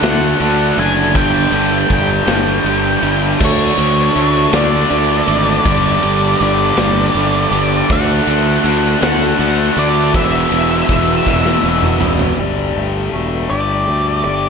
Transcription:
0.02 fingered electric bass D2, distorted electric guitar D3 A3 D4, lead electric guitar F#5, snare, ride
0.40 fingered electric bass D2, distorted electric guitar D3 A3 D4, ride
0.77 fingered electric bass F#1, distorted electric guitar D3 A3 D4, lead electric guitar G#5, ride
1.14 fingered electric bass G1, distorted electric guitar G2 D3 G3, lead electric guitar G5, kick, ride
1.52 fingered electric bass G1, distorted electric guitar G2 D3 G3, ride
1.88 fingered electric bass G1, distorted electric guitar G2 D3 G3, kick, ride
1.92 distorted electric guitar G2, lead electric guitar G5
2.26 fingered electric bass G1, distorted electric guitar G2 D3 G3, snare, ride
2.30 distorted electric guitar G2
2.64 fingered electric bass G1, distorted electric guitar G2 D3 G3, ride
3.02 fingered electric bass G1, distorted electric guitar G2 D3 G3, ride
3.39 fingered electric bass D2, distorted electric guitar D3 A3 D4, kick, crash
3.45 lead electric guitar C#5
3.77 fingered electric bass D2, distorted electric guitar D3 A3 D4, ride
4.16 fingered electric bass D2, distorted electric guitar D3 A3 D4, ride
4.51 fingered electric bass D2, distorted electric guitar D3 A3 D4, lead electric guitar D5, snare, ride
4.89 fingered electric bass D2, distorted electric guitar D3 A3 D4, ride
5.27 fingered electric bass G#1, distorted electric guitar D3 A3 D4, ride
5.65 fingered electric bass G1, distorted electric guitar G2 D3 G3, lead electric guitar D5, kick, ride
6.02 fingered electric bass G1, distorted electric guitar G2 D3 G3, ride
6.39 fingered electric bass G1, distorted electric guitar G2 D3 G3, lead electric guitar D5, ride
6.77 fingered electric bass G1, distorted electric guitar G2 D3 G3, snare, ride
7.15 fingered electric bass G1, distorted electric guitar G2 D3 G3, ride
7.51 fingered electric bass G1, distorted electric guitar G2 D3 G3, ride
7.89 fingered electric bass D2, distorted electric guitar D3 A3 D4, lead electric guitar F#5, kick, ride
8.26 fingered electric bass D2, distorted electric guitar D3 A3 D4, ride
8.63 fingered electric bass D2, distorted electric guitar D3 A3 D4, ride
9.00 fingered electric bass D2, distorted electric guitar D3 A3 D4, lead electric guitar F#5, snare, ride
9.38 fingered electric bass D2, distorted electric guitar D3 A3 D4, ride
9.75 fingered electric bass D2, distorted electric guitar D3 A3 D4, lead electric guitar D5, ride
10.13 fingered electric bass E1, distorted electric guitar E2 B2 E3, lead electric guitar E5, kick, ride
10.50 fingered electric bass E1, distorted electric guitar E2 B2 E3, ride
10.88 fingered electric bass E1, distorted electric guitar E2 B2 E3, kick, ride
11.26 fingered electric bass E1, distorted electric guitar E2 B2 E3, kick
11.46 snare
11.63 fingered electric bass E1, distorted electric guitar E2 B2 E3
11.82 mid tom
12.00 fingered electric bass E1, distorted electric guitar E2 B2 E3, floor tom
12.19 floor tom
12.36 fingered electric bass G1, distorted electric guitar G2 D3 G3, clean electric guitar G3
12.76 fingered electric bass G1, clean electric guitar A3
13.13 fingered electric bass E1, clean electric guitar A3
13.50 fingered electric bass G1, clean electric guitar G4, lead electric guitar D5
13.88 fingered electric bass D2, clean electric guitar A3
14.24 fingered electric bass G1, clean electric guitar G3, lead electric guitar D5

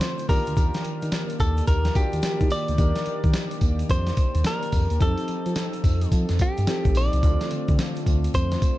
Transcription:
Already playing: analog synth pad D3 A3 C4 F4, grand piano C4 D4 F4 A4, clean electric guitar C5
0.00 snare, closed hi-hat, tambourine, shaker
0.18 closed hi-hat, shaker
0.28 analog synth bass D#2, analog synth pad D#3 A#3 G4 D5, grand piano D4 F4 G4 A#4, clean electric guitar A#4, kick, open hi-hat, tambourine, shaker
0.46 analog synth bass D2, closed hi-hat, shaker
0.56 analog synth bass D#2, kick, closed hi-hat, tambourine, shaker
0.74 snare, closed hi-hat, shaker
0.84 analog synth bass D#3, closed hi-hat
1.02 analog synth bass D#3, closed hi-hat, shaker
1.12 snare, closed hi-hat, tambourine, shaker
1.29 closed hi-hat, shaker
1.39 analog synth bass D#2, clean electric guitar A4, kick, closed hi-hat, tambourine, shaker
1.57 closed hi-hat, shaker
1.67 analog synth bass D#2, clean electric guitar A#4, kick, closed hi-hat, tambourine, shaker
1.85 snare, closed hi-hat, shaker
1.95 grand piano D4 F4 F#4 A#4, clean electric guitar G4, kick, closed hi-hat, tambourine, shaker
2.02 grand piano G4
2.12 analog synth bass D#2, closed hi-hat, shaker
2.22 snare, closed hi-hat, tambourine, shaker
2.40 analog synth bass D#3, kick, closed hi-hat, shaker
2.50 clean electric guitar D5, open hi-hat, tambourine, shaker
2.68 analog synth bass D2, closed hi-hat, shaker
2.78 analog synth bass D#2, grand piano D4 D#4 G4 A#4, kick, closed hi-hat, tambourine, shaker
2.96 snare, closed hi-hat, shaker
3.06 analog synth bass D#3, closed hi-hat
3.24 analog synth bass D#3, kick, closed hi-hat, shaker
3.33 snare, closed hi-hat, tambourine, shaker
3.51 closed hi-hat, shaker
3.61 analog synth bass D#2, kick, closed hi-hat, tambourine, shaker
3.79 closed hi-hat, shaker
3.90 analog synth bass F2, clean electric guitar C5, kick, closed hi-hat, tambourine, shaker
4.07 snare, closed hi-hat, shaker
4.17 kick, closed hi-hat, tambourine, shaker
4.35 analog synth bass D#2, closed hi-hat, shaker
4.44 clean electric guitar A#4, snare, closed hi-hat, tambourine, shaker
4.63 closed hi-hat, shaker
4.72 analog synth bass F2, kick, open hi-hat, tambourine, shaker
4.90 analog synth bass D#2, closed hi-hat, shaker
4.99 analog synth bass F2, analog synth pad F3 C4 D#4 A4, grand piano C4 D#4 G4 A4, clean electric guitar A4, kick, closed hi-hat, tambourine, shaker
5.18 closed hi-hat, shaker
5.28 analog synth bass F3, closed hi-hat
5.46 analog synth bass F3, closed hi-hat, shaker
5.56 snare, closed hi-hat, tambourine, shaker
5.73 closed hi-hat, shaker
5.84 analog synth bass F2, kick, open hi-hat, tambourine, shaker
6.01 closed hi-hat, shaker
6.12 analog synth bass F3, kick, closed hi-hat, tambourine, shaker
6.29 analog synth bass F2, snare, closed hi-hat, shaker
6.39 clean electric guitar G4, kick, closed hi-hat, tambourine, shaker
6.57 analog synth bass G2, closed hi-hat, shaker
6.67 grand piano C4 D#4 G4 A4, snare, closed hi-hat, tambourine, shaker
6.85 analog synth bass A1, kick, closed hi-hat, shaker
6.95 analog synth bass A#1, clean electric guitar D5, open hi-hat, tambourine, shaker
7.13 analog synth bass C2, closed hi-hat, shaker
7.22 analog synth bass D2, analog synth pad D3 A3 F4, grand piano C4 D4 F4 A4, kick, closed hi-hat, tambourine, shaker
7.41 snare, closed hi-hat, shaker
7.51 analog synth bass D3, closed hi-hat
7.68 analog synth bass D3, kick, closed hi-hat, shaker
7.79 snare, closed hi-hat, tambourine, shaker
7.96 closed hi-hat, shaker
8.06 analog synth bass D2, kick, closed hi-hat, tambourine, shaker
8.24 closed hi-hat, shaker
8.34 analog synth bass F2, clean electric guitar C5, kick, closed hi-hat, tambourine, shaker
8.52 snare, closed hi-hat, shaker
8.62 kick, closed hi-hat, tambourine, shaker

